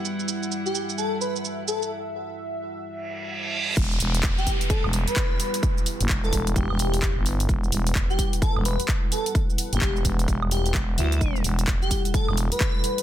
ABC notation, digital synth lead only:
X:1
M:4/4
L:1/16
Q:"Swing 16ths" 1/4=129
K:Em
V:1 name="Digital synth lead"
z4 z G z2 A z B z3 A z | z16 | z4 z G z2 A z2 B4- B- | B z4 A z2 G6 z2 |
z4 z G z2 A z B z3 A z | z3 G G z4 z G G z2 E2- | E z4 G z2 A z2 B4- B |]